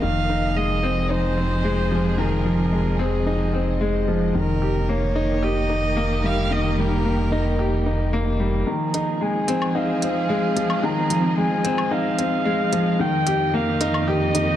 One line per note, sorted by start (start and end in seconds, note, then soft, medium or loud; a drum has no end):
0.00 4.32 F1 medium
0.00 0.28 D#3 medium
0.00 4.35 F3 medium
0.00 1.75 A#3 medium
0.00 8.67 D#5 medium
0.00 0.58 F5 medium
0.30 0.45 D#4 medium
0.30 4.35 G#4 medium
0.37 5.76 C3 medium
0.56 0.72 G#3 medium
0.56 1.12 D#5 medium
0.83 1.09 C4 medium
1.10 1.36 D#4 medium
1.10 2.20 C5 medium
1.37 1.63 C4 medium
1.64 1.90 G#3 medium
1.91 2.17 F3 medium
2.18 2.34 D#3 medium
2.18 3.01 A#4 medium
2.45 2.71 F3 medium
2.72 2.98 G#3 medium
2.99 3.25 C4 medium
2.99 3.81 G#4 medium
3.27 3.42 D#4 medium
3.54 3.69 C4 medium
3.81 4.06 G#3 medium
4.08 4.34 F3 medium
4.34 8.64 F1 medium
4.34 8.67 D#3 medium
4.34 4.61 D#3 medium
4.34 4.91 A#4 medium
4.49 9.68 A#3 medium
4.62 4.77 G4 medium
4.89 5.04 A#3 medium
4.89 5.45 C#5 medium
5.04 8.67 G4 medium
5.16 5.41 D#4 medium
5.43 5.68 G4 medium
5.43 6.27 D#5 medium
5.70 5.95 D#4 medium
5.97 6.22 A#3 medium
6.24 6.50 G3 medium
6.24 6.53 F5 loud
6.51 6.66 D#3 medium
6.51 6.81 D#5 medium
6.78 7.04 G3 medium
6.78 7.87 A#4 medium
7.05 7.31 A#3 medium
7.32 7.58 D#4 medium
7.59 7.75 G4 medium
7.86 8.02 D#4 medium
8.13 8.39 A#3 medium
8.40 8.66 G3 medium
8.67 8.93 D#3 medium
8.67 12.99 F3 medium
8.67 9.23 A#5 loud
8.82 12.99 G#4 medium
8.94 9.10 D#4 medium
8.94 closed hi-hat medium
9.10 14.56 C4 medium
9.21 9.37 G#3 medium
9.21 9.77 G#5 medium
9.48 9.74 C4 medium
9.48 closed hi-hat medium
9.62 low woodblock medium
9.75 10.01 D#4 medium
9.75 10.85 F5 loud
9.99 10.28 C4 medium
9.99 14.56 D#5 medium
9.99 closed hi-hat medium
10.29 10.55 G#3 medium
10.56 10.82 F3 medium
10.56 closed hi-hat medium
10.70 low woodblock medium
10.84 10.99 D#3 medium
10.84 11.37 A#5 loud
11.10 11.36 F3 medium
11.10 closed hi-hat medium
11.38 11.63 G#3 medium
11.38 11.93 G#5 medium
11.64 11.90 C4 medium
11.64 closed hi-hat medium
11.78 low woodblock medium
11.91 12.07 D#4 medium
11.91 13.02 F5 loud
12.19 12.34 C4 medium
12.19 closed hi-hat medium
12.45 12.71 G#3 medium
12.73 12.98 F3 medium
12.73 closed hi-hat medium
12.99 14.56 F2 medium
12.99 13.25 D#3 medium
12.99 13.56 G5 loud
13.05 14.56 D#3 medium
13.27 13.42 G4 medium
13.27 closed hi-hat medium
13.54 13.69 A#3 medium
13.54 14.10 F5 medium
13.81 14.06 D#4 medium
13.81 closed hi-hat medium
13.85 14.56 A#3 medium
13.85 14.56 G4 medium
13.94 low woodblock medium
14.08 14.33 G4 medium
14.08 14.56 D#5 loud
14.35 14.56 D#4 medium
14.35 closed hi-hat medium